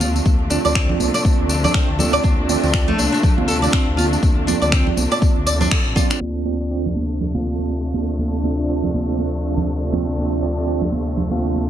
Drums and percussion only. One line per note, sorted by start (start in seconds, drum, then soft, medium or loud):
0.01 tambourine loud
0.01 high conga loud
0.15 tambourine soft
0.15 muted conga soft
0.25 kick loud
0.25 tambourine soft
0.25 high conga medium
0.50 tambourine loud
0.50 muted conga medium
0.50 high conga medium
0.65 tambourine soft
0.75 finger snap loud
0.75 kick loud
0.75 tambourine soft
0.89 muted conga soft
0.89 low conga medium
1.00 tambourine medium
1.00 high conga loud
1.14 tambourine medium
1.25 kick loud
1.25 tambourine soft
1.25 muted conga soft
1.25 high conga medium
1.49 tambourine medium
1.64 tambourine soft
1.64 low conga medium
1.74 finger snap loud
1.74 kick loud
1.74 tambourine soft
1.99 tambourine medium
1.99 high conga loud
1.99 low conga medium
2.14 tambourine medium
2.14 muted conga medium
2.24 kick loud
2.24 tambourine soft
2.24 high conga medium
2.49 tambourine loud
2.49 muted conga soft
2.49 high conga medium
2.63 tambourine soft
2.74 finger snap loud
2.74 kick loud
2.88 muted conga soft
2.88 low conga medium
2.98 tambourine medium
2.98 high conga medium
3.14 tambourine medium
3.23 kick loud
3.23 tambourine soft
3.23 muted conga soft
3.23 low conga medium
3.38 high conga loud
3.48 tambourine medium
3.63 tambourine soft
3.63 high conga medium
3.73 finger snap loud
3.73 kick loud
3.73 muted conga soft
3.98 tambourine medium
3.98 high conga loud
4.13 tambourine soft
4.13 muted conga soft
4.23 kick loud
4.23 tambourine soft
4.23 high conga medium
4.48 tambourine medium
4.48 muted conga medium
4.48 high conga medium
4.48 low conga medium
4.62 tambourine soft
4.72 finger snap loud
4.72 kick loud
4.72 tambourine soft
4.87 muted conga soft
4.87 low conga medium
4.97 tambourine medium
4.97 high conga loud
5.11 tambourine soft
5.22 kick loud
5.22 tambourine soft
5.22 muted conga medium
5.22 high conga medium
5.47 tambourine loud
5.61 tambourine soft
5.61 low conga loud
5.71 finger snap loud
5.71 kick loud
5.71 tambourine soft
5.96 kick medium
5.96 tambourine medium
5.96 high conga loud
5.96 low conga medium
6.10 finger snap medium
6.10 tambourine medium
6.10 muted conga medium
6.21 high conga medium
6.45 muted conga medium
6.45 high conga medium
6.85 muted conga soft
6.85 low conga medium
6.96 high conga loud
7.20 muted conga soft
7.20 low conga medium
7.34 high conga loud
7.59 high conga medium
7.70 muted conga soft
7.94 high conga loud
8.09 muted conga soft
8.19 high conga medium
8.43 muted conga soft
8.43 high conga medium
8.83 muted conga soft
8.83 low conga medium
8.95 high conga loud
9.18 muted conga soft
9.18 high conga medium
9.57 low conga loud
9.68 muted conga soft
9.93 high conga loud
9.93 low conga medium
10.08 muted conga soft
10.18 high conga medium
10.43 muted conga medium
10.43 high conga medium
10.81 muted conga soft
10.81 low conga medium
10.92 high conga loud
11.17 muted conga soft
11.17 low conga medium
11.31 high conga loud
11.56 high conga medium